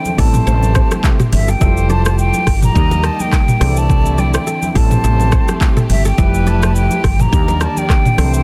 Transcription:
Already playing: D3 E3 A3 C4 D4 E4 A4 G5
0.05 high conga, shaker
0.17 A1 C3 G3 A3 B3 E4 G4 A4 C5 D5 A5, kick, open hi-hat, shaker
0.24 C4
0.34 mid tom, high conga, shaker
0.47 A1 C5, low conga, shaker
0.63 high conga, shaker
0.75 C5, kick, cross-stick, shaker
0.91 A4, cross-stick, high conga, shaker
1.04 kick, clap, low conga, shaker
1.20 G4, mid tom, shaker
1.32 G1 E5, open hi-hat, high conga, low conga, shaker
1.48 A4 G5, shaker
1.60 F1 F3 G3 A3 E4 F4 G4 A4 C5 E5, kick, low conga, shaker
1.77 shaker
1.90 D5 A5, high conga, shaker
2.05 C5 A5, cross-stick, high conga, shaker
2.18 G5, shaker
2.34 high conga, shaker
2.47 G1 A4, kick, cross-stick, open hi-hat, shaker
2.62 A#5, mid tom, high conga, shaker
2.74 D#2 D#3 G3 A#3 D#4 G4 A#4 D#5, kick, low conga, shaker
2.91 A#4, high conga, shaker
3.03 A#4 A5, cross-stick, shaker
3.20 G5, high conga, shaker
3.32 kick, cross-stick, clap, low conga, shaker
3.48 mid tom, shaker
3.60 C2 D3 E3 A3 C4 D4 E4 G4 G#4 A4 D5, cross-stick, open hi-hat, high conga, low conga, shaker
3.69 A4
3.77 A5, shaker
3.89 kick, low conga, shaker
4.06 shaker
4.18 D5 G5, high conga, shaker
4.34 C5 G5, cross-stick, high conga, shaker
4.47 A4, shaker
4.62 high conga, shaker
4.74 A1 C3 G3 A3 C4 E4 G4 A4 C5 A5, kick, open hi-hat, shaker
4.91 mid tom, high conga, shaker
5.04 A1 A4, low conga, shaker
5.20 high conga, shaker
5.32 C5, kick, cross-stick, shaker
5.48 G4, cross-stick, high conga, shaker
5.61 kick, clap, low conga, shaker
5.77 A4, mid tom, shaker
5.90 G1 E5, open hi-hat, high conga, low conga, shaker
6.05 A4 G5, shaker
6.17 F1 F3 G3 E4 G4 B4 E5, kick, low conga, shaker
6.24 A3
6.34 shaker
6.47 D5 A5, high conga, shaker
6.62 C5 A5, cross-stick, high conga, shaker
6.76 G5, shaker
6.91 high conga, shaker
7.04 G1 A4, kick, cross-stick, open hi-hat, shaker
7.19 A#5, mid tom, high conga, shaker
7.31 D#2 D#3 G3 A#3 D4 D#4 G4 A#4 D5, kick, low conga, shaker
7.48 A#4, high conga, shaker
7.61 A#4 A5, cross-stick, shaker
7.77 G5, high conga, shaker
7.90 kick, cross-stick, clap, low conga, shaker
8.05 mid tom, shaker
8.17 C2 D3 E3 A3 C4 D4 E4 G4 A4 C5, cross-stick, open hi-hat, high conga, low conga, shaker
8.34 G5, shaker

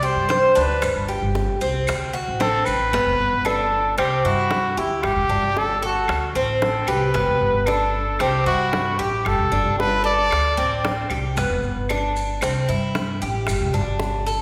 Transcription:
Already playing: C2
0.03 G4 C5, maracas
0.16 G2
0.29 C5, high bongo, low bongo, maracas
0.55 D2 D4 B4, maracas
0.82 G1, high bongo, claves, maracas
0.96 G1
1.08 G4, high bongo, maracas
1.22 G1
1.35 high bongo, maracas
1.61 C2 C4, high bongo, maracas
1.87 D2, high bongo, claves, maracas
2.13 F#4, high bongo, maracas
2.28 A1
2.40 C4 A4, high bongo, low bongo, maracas
2.65 A1 B4, claves, maracas
2.93 G1 B3, high bongo
3.06 E1
3.20 G1
3.33 G1
3.45 D4 A4, high bongo, claves
3.98 C2 C4 G4, high bongo, claves
4.24 G2 E4 F#4
4.51 high bongo, low bongo
4.77 D2 E4 G4
5.03 G1 G4, high bongo, claves
5.16 E1
5.29 G1 D4, high bongo
5.43 G1
5.57 A4, high bongo
5.82 F#4 A4, high bongo
6.08 D2, high bongo, claves
6.35 A1 C4, high bongo
6.62 A4, high bongo, low bongo
6.87 C2 G4 B4, claves
7.14 G1 B3, high bongo
7.27 E1
7.40 G1
7.54 G1
7.66 D4 A4, high bongo, claves
8.19 C2 C4 G4, high bongo, claves
8.46 G2 E4 F#4
8.73 high bongo, low bongo
8.99 A1 G4
9.25 G1 A4, high bongo, claves
9.39 E1
9.52 G1 D4, high bongo
9.65 G1
9.79 B4, high bongo
10.04 A4 D5, high bongo
10.31 D2, high bongo, claves
10.57 A1 C4, high bongo
10.85 high bongo, low bongo
11.10 C2 G4, claves
11.37 G1 B3, high bongo, maracas
11.50 E1
11.63 G1, maracas
11.76 G1
11.89 D4, high bongo, claves, maracas
12.16 maracas
12.41 C2 C4, high bongo, claves, maracas
12.69 G2 E4, maracas
12.95 high bongo, low bongo, maracas
13.22 A1 G4, maracas
13.47 G1, high bongo, claves, maracas
13.61 E1
13.73 G1 D4, high bongo, maracas
13.87 G1
13.99 high bongo, maracas
14.26 A4, high bongo, maracas

